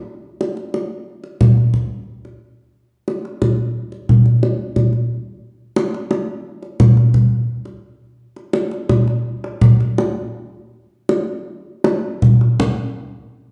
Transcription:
0, 0, Header, 1, 2, 480
1, 0, Start_track
1, 0, Tempo, 669643
1, 52, Time_signature, 4, 2, 24, 8
1, 3892, Tempo, 683371
1, 5332, Tempo, 717703
1, 7252, Tempo, 749064
1, 9280, End_track
2, 0, Start_track
2, 0, Title_t, "Kendang"
2, 292, Note_on_c, 9, 63, 37
2, 363, Note_off_c, 9, 63, 0
2, 408, Note_on_c, 9, 62, 17
2, 480, Note_off_c, 9, 62, 0
2, 531, Note_on_c, 9, 63, 38
2, 602, Note_off_c, 9, 63, 0
2, 886, Note_on_c, 9, 62, 16
2, 958, Note_off_c, 9, 62, 0
2, 1008, Note_on_c, 9, 63, 31
2, 1008, Note_on_c, 9, 64, 53
2, 1080, Note_off_c, 9, 63, 0
2, 1080, Note_off_c, 9, 64, 0
2, 1128, Note_on_c, 9, 62, 11
2, 1200, Note_off_c, 9, 62, 0
2, 1245, Note_on_c, 9, 64, 37
2, 1317, Note_off_c, 9, 64, 0
2, 1612, Note_on_c, 9, 62, 14
2, 1684, Note_off_c, 9, 62, 0
2, 2206, Note_on_c, 9, 63, 40
2, 2277, Note_off_c, 9, 63, 0
2, 2330, Note_on_c, 9, 62, 16
2, 2402, Note_off_c, 9, 62, 0
2, 2449, Note_on_c, 9, 63, 37
2, 2449, Note_on_c, 9, 64, 39
2, 2521, Note_off_c, 9, 63, 0
2, 2521, Note_off_c, 9, 64, 0
2, 2810, Note_on_c, 9, 62, 15
2, 2882, Note_off_c, 9, 62, 0
2, 2933, Note_on_c, 9, 64, 52
2, 3005, Note_off_c, 9, 64, 0
2, 3051, Note_on_c, 9, 62, 14
2, 3123, Note_off_c, 9, 62, 0
2, 3175, Note_on_c, 9, 63, 39
2, 3247, Note_off_c, 9, 63, 0
2, 3413, Note_on_c, 9, 63, 35
2, 3413, Note_on_c, 9, 64, 36
2, 3485, Note_off_c, 9, 63, 0
2, 3485, Note_off_c, 9, 64, 0
2, 3532, Note_on_c, 9, 62, 15
2, 3604, Note_off_c, 9, 62, 0
2, 4127, Note_on_c, 9, 63, 61
2, 4197, Note_off_c, 9, 63, 0
2, 4253, Note_on_c, 9, 62, 22
2, 4323, Note_off_c, 9, 62, 0
2, 4368, Note_on_c, 9, 63, 53
2, 4438, Note_off_c, 9, 63, 0
2, 4732, Note_on_c, 9, 62, 16
2, 4802, Note_off_c, 9, 62, 0
2, 4853, Note_on_c, 9, 63, 42
2, 4853, Note_on_c, 9, 64, 62
2, 4923, Note_off_c, 9, 63, 0
2, 4923, Note_off_c, 9, 64, 0
2, 4975, Note_on_c, 9, 62, 16
2, 5045, Note_off_c, 9, 62, 0
2, 5094, Note_on_c, 9, 64, 46
2, 5165, Note_off_c, 9, 64, 0
2, 5448, Note_on_c, 9, 62, 18
2, 5515, Note_off_c, 9, 62, 0
2, 5923, Note_on_c, 9, 62, 16
2, 5990, Note_off_c, 9, 62, 0
2, 6037, Note_on_c, 9, 63, 49
2, 6104, Note_off_c, 9, 63, 0
2, 6157, Note_on_c, 9, 62, 18
2, 6224, Note_off_c, 9, 62, 0
2, 6277, Note_on_c, 9, 63, 53
2, 6277, Note_on_c, 9, 64, 41
2, 6344, Note_off_c, 9, 63, 0
2, 6344, Note_off_c, 9, 64, 0
2, 6399, Note_on_c, 9, 62, 19
2, 6466, Note_off_c, 9, 62, 0
2, 6644, Note_on_c, 9, 62, 21
2, 6710, Note_off_c, 9, 62, 0
2, 6760, Note_on_c, 9, 64, 62
2, 6827, Note_off_c, 9, 64, 0
2, 6887, Note_on_c, 9, 62, 18
2, 6954, Note_off_c, 9, 62, 0
2, 7006, Note_on_c, 9, 63, 57
2, 7073, Note_off_c, 9, 63, 0
2, 7727, Note_on_c, 9, 63, 57
2, 7791, Note_off_c, 9, 63, 0
2, 8208, Note_on_c, 9, 63, 68
2, 8273, Note_off_c, 9, 63, 0
2, 8451, Note_on_c, 9, 64, 62
2, 8515, Note_off_c, 9, 64, 0
2, 8572, Note_on_c, 9, 62, 21
2, 8637, Note_off_c, 9, 62, 0
2, 8691, Note_on_c, 9, 64, 73
2, 8755, Note_off_c, 9, 64, 0
2, 9280, End_track
0, 0, End_of_file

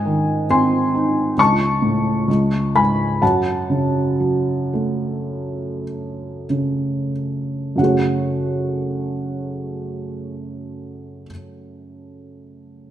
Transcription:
0, 0, Header, 1, 2, 480
1, 0, Start_track
1, 0, Key_signature, 3, "minor"
1, 0, Tempo, 882353
1, 749, Tempo, 923077
1, 1708, Time_signature, 4, 2, 24, 8
1, 1709, Tempo, 980392
1, 2189, Tempo, 1069519
1, 2669, Tempo, 1224490
1, 3149, Tempo, 1295896
1, 3629, Tempo, 1242236
1, 4109, Tempo, 1209677
1, 5646, End_track
2, 0, Start_track
2, 0, Title_t, "Felt piano"
2, 0, Program_c, 0, 0
2, 0, Control_c, 0, 64, 127
2, 0, Note_on_c, 0, 44, 39
2, 0, Note_on_c, 0, 75, 45
2, 0, Note_on_c, 0, 80, 51
2, 27, Note_on_c, 0, 51, 29
2, 245, Note_off_c, 0, 75, 0
2, 246, Note_off_c, 0, 80, 0
2, 272, Note_on_c, 0, 60, 35
2, 274, Note_on_c, 0, 80, 43
2, 275, Note_on_c, 0, 84, 59
2, 515, Note_on_c, 0, 63, 33
2, 726, Note_off_c, 0, 44, 0
2, 727, Note_off_c, 0, 51, 0
2, 731, Note_off_c, 0, 80, 0
2, 737, Note_off_c, 0, 60, 0
2, 746, Note_off_c, 0, 63, 0
2, 748, Note_on_c, 0, 37, 42
2, 756, Control_c, 0, 64, 0
2, 757, Note_on_c, 0, 85, 59
2, 759, Note_on_c, 0, 81, 49
2, 767, Note_off_c, 0, 84, 0
2, 832, Control_c, 0, 64, 127
2, 980, Note_on_c, 0, 45, 30
2, 1206, Note_off_c, 0, 37, 0
2, 1212, Note_off_c, 0, 45, 0
2, 1218, Note_on_c, 0, 37, 43
2, 1228, Control_c, 0, 64, 0
2, 1328, Control_c, 0, 64, 127
2, 1448, Note_off_c, 0, 81, 0
2, 1465, Note_on_c, 0, 44, 28
2, 1466, Note_on_c, 0, 83, 52
2, 1468, Note_on_c, 0, 80, 38
2, 1489, Note_off_c, 0, 85, 0
2, 1692, Note_off_c, 0, 37, 0
2, 1694, Note_off_c, 0, 80, 0
2, 1702, Note_off_c, 0, 44, 0
2, 1707, Note_on_c, 0, 78, 36
2, 1707, Note_on_c, 0, 81, 45
2, 1711, Note_on_c, 0, 42, 34
2, 1714, Control_c, 0, 64, 0
2, 1717, Note_off_c, 0, 83, 0
2, 1796, Control_c, 0, 64, 127
2, 1941, Note_on_c, 0, 49, 26
2, 2187, Note_on_c, 0, 54, 25
2, 2426, Note_on_c, 0, 57, 24
2, 2882, Note_off_c, 0, 49, 0
2, 3132, Note_off_c, 0, 78, 0
2, 3132, Note_off_c, 0, 81, 0
2, 3133, Note_off_c, 0, 54, 0
2, 3149, Note_on_c, 0, 49, 20
2, 3378, Note_off_c, 0, 57, 0
2, 3610, Note_off_c, 0, 42, 0
2, 3615, Note_off_c, 0, 49, 0
2, 3616, Note_on_c, 0, 42, 19
2, 3623, Note_on_c, 0, 49, 19
2, 3624, Note_on_c, 0, 78, 30
2, 3631, Note_on_c, 0, 57, 20
2, 3633, Control_c, 0, 64, 0
2, 3638, Note_on_c, 0, 66, 18
2, 3643, Note_on_c, 0, 68, 19
2, 3649, Note_on_c, 0, 73, 22
2, 3689, Control_c, 0, 64, 127
2, 4978, Note_off_c, 0, 42, 0
2, 4986, Note_off_c, 0, 49, 0
2, 4987, Note_off_c, 0, 78, 0
2, 4995, Note_off_c, 0, 57, 0
2, 5002, Note_off_c, 0, 66, 0
2, 5007, Note_off_c, 0, 68, 0
2, 5013, Note_off_c, 0, 73, 0
2, 5646, End_track
0, 0, End_of_file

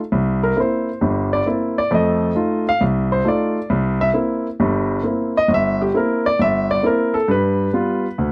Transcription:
0, 0, Header, 1, 2, 480
1, 0, Start_track
1, 0, Tempo, 447761
1, 126, Time_signature, 4, 2, 24, 8
1, 8918, End_track
2, 0, Start_track
2, 0, Title_t, "Grand piano"
2, 0, Program_c, 0, 0
2, 130, Note_on_c, 0, 36, 72
2, 465, Note_on_c, 0, 70, 80
2, 545, Note_off_c, 0, 36, 0
2, 603, Note_on_c, 0, 58, 50
2, 604, Note_on_c, 0, 60, 48
2, 607, Note_off_c, 0, 70, 0
2, 611, Note_on_c, 0, 64, 56
2, 645, Note_on_c, 0, 72, 70
2, 946, Note_off_c, 0, 58, 0
2, 946, Note_off_c, 0, 60, 0
2, 950, Note_off_c, 0, 64, 0
2, 1086, Note_on_c, 0, 43, 68
2, 1088, Note_on_c, 0, 31, 70
2, 1388, Note_off_c, 0, 72, 0
2, 1426, Note_on_c, 0, 74, 81
2, 1503, Note_off_c, 0, 43, 0
2, 1504, Note_off_c, 0, 31, 0
2, 1567, Note_off_c, 0, 74, 0
2, 1567, Note_on_c, 0, 58, 48
2, 1573, Note_on_c, 0, 60, 48
2, 1579, Note_on_c, 0, 64, 57
2, 1908, Note_off_c, 0, 58, 0
2, 1911, Note_off_c, 0, 60, 0
2, 1911, Note_on_c, 0, 74, 84
2, 1913, Note_off_c, 0, 64, 0
2, 2046, Note_on_c, 0, 57, 74
2, 2049, Note_off_c, 0, 74, 0
2, 2049, Note_on_c, 0, 41, 73
2, 2085, Note_on_c, 0, 75, 74
2, 2462, Note_off_c, 0, 57, 0
2, 2464, Note_off_c, 0, 41, 0
2, 2519, Note_on_c, 0, 57, 51
2, 2525, Note_on_c, 0, 63, 47
2, 2528, Note_on_c, 0, 65, 57
2, 2828, Note_off_c, 0, 75, 0
2, 2863, Note_off_c, 0, 57, 0
2, 2866, Note_off_c, 0, 63, 0
2, 2868, Note_off_c, 0, 65, 0
2, 2880, Note_on_c, 0, 77, 91
2, 3011, Note_on_c, 0, 36, 71
2, 3014, Note_off_c, 0, 77, 0
2, 3345, Note_on_c, 0, 72, 78
2, 3425, Note_off_c, 0, 36, 0
2, 3477, Note_on_c, 0, 57, 54
2, 3481, Note_on_c, 0, 63, 47
2, 3486, Note_off_c, 0, 72, 0
2, 3487, Note_on_c, 0, 65, 55
2, 3520, Note_on_c, 0, 74, 74
2, 3823, Note_off_c, 0, 57, 0
2, 3824, Note_off_c, 0, 63, 0
2, 3827, Note_off_c, 0, 65, 0
2, 3966, Note_on_c, 0, 36, 73
2, 4266, Note_off_c, 0, 74, 0
2, 4300, Note_on_c, 0, 76, 92
2, 4383, Note_off_c, 0, 36, 0
2, 4389, Note_off_c, 0, 76, 0
2, 4434, Note_on_c, 0, 58, 53
2, 4441, Note_on_c, 0, 60, 49
2, 4442, Note_on_c, 0, 64, 60
2, 4781, Note_off_c, 0, 58, 0
2, 4785, Note_off_c, 0, 60, 0
2, 4785, Note_off_c, 0, 64, 0
2, 4929, Note_on_c, 0, 31, 73
2, 4932, Note_on_c, 0, 43, 73
2, 5345, Note_off_c, 0, 31, 0
2, 5346, Note_off_c, 0, 43, 0
2, 5397, Note_on_c, 0, 58, 53
2, 5403, Note_on_c, 0, 60, 46
2, 5404, Note_on_c, 0, 64, 57
2, 5743, Note_off_c, 0, 58, 0
2, 5746, Note_off_c, 0, 60, 0
2, 5746, Note_off_c, 0, 64, 0
2, 5761, Note_on_c, 0, 75, 92
2, 5878, Note_on_c, 0, 31, 71
2, 5895, Note_off_c, 0, 75, 0
2, 5940, Note_on_c, 0, 76, 93
2, 6231, Note_off_c, 0, 76, 0
2, 6235, Note_on_c, 0, 67, 67
2, 6299, Note_off_c, 0, 31, 0
2, 6370, Note_on_c, 0, 60, 51
2, 6371, Note_on_c, 0, 58, 53
2, 6372, Note_off_c, 0, 67, 0
2, 6378, Note_on_c, 0, 64, 61
2, 6400, Note_on_c, 0, 70, 74
2, 6700, Note_off_c, 0, 70, 0
2, 6710, Note_off_c, 0, 58, 0
2, 6710, Note_off_c, 0, 60, 0
2, 6713, Note_on_c, 0, 74, 94
2, 6714, Note_off_c, 0, 64, 0
2, 6851, Note_off_c, 0, 74, 0
2, 6854, Note_on_c, 0, 31, 69
2, 6877, Note_on_c, 0, 76, 91
2, 7179, Note_off_c, 0, 76, 0
2, 7191, Note_on_c, 0, 74, 88
2, 7268, Note_off_c, 0, 31, 0
2, 7322, Note_on_c, 0, 58, 51
2, 7323, Note_on_c, 0, 60, 50
2, 7330, Note_off_c, 0, 74, 0
2, 7332, Note_on_c, 0, 64, 60
2, 7359, Note_on_c, 0, 70, 77
2, 7654, Note_on_c, 0, 69, 86
2, 7660, Note_off_c, 0, 70, 0
2, 7666, Note_off_c, 0, 58, 0
2, 7667, Note_off_c, 0, 60, 0
2, 7671, Note_off_c, 0, 64, 0
2, 7801, Note_off_c, 0, 69, 0
2, 7806, Note_on_c, 0, 43, 74
2, 7838, Note_on_c, 0, 71, 80
2, 8223, Note_off_c, 0, 43, 0
2, 8290, Note_on_c, 0, 55, 56
2, 8295, Note_on_c, 0, 59, 50
2, 8297, Note_on_c, 0, 65, 61
2, 8629, Note_off_c, 0, 55, 0
2, 8632, Note_off_c, 0, 59, 0
2, 8633, Note_off_c, 0, 65, 0
2, 8771, Note_on_c, 0, 38, 69
2, 8918, Note_off_c, 0, 38, 0
2, 8918, Note_off_c, 0, 71, 0
2, 8918, End_track
0, 0, End_of_file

